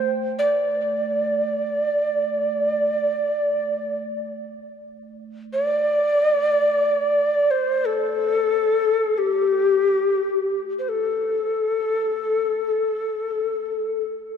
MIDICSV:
0, 0, Header, 1, 3, 480
1, 0, Start_track
1, 0, Tempo, 500000
1, 13797, End_track
2, 0, Start_track
2, 0, Title_t, "Native American-style wooden flute"
2, 0, Program_c, 0, 77
2, 0, Note_on_c, 0, 72, 60
2, 100, Note_off_c, 0, 72, 0
2, 372, Note_on_c, 0, 74, 61
2, 3818, Note_off_c, 0, 74, 0
2, 5309, Note_on_c, 0, 74, 83
2, 7205, Note_on_c, 0, 72, 68
2, 7220, Note_off_c, 0, 74, 0
2, 7539, Note_on_c, 0, 69, 75
2, 7553, Note_off_c, 0, 72, 0
2, 8811, Note_on_c, 0, 67, 68
2, 8825, Note_off_c, 0, 69, 0
2, 10176, Note_off_c, 0, 67, 0
2, 10358, Note_on_c, 0, 72, 42
2, 10451, Note_on_c, 0, 69, 61
2, 10466, Note_off_c, 0, 72, 0
2, 13499, Note_off_c, 0, 69, 0
2, 13797, End_track
3, 0, Start_track
3, 0, Title_t, "Singing bowl"
3, 0, Program_c, 1, 14
3, 0, Note_on_c, 1, 57, 44
3, 2959, Note_off_c, 1, 57, 0
3, 13797, End_track
0, 0, End_of_file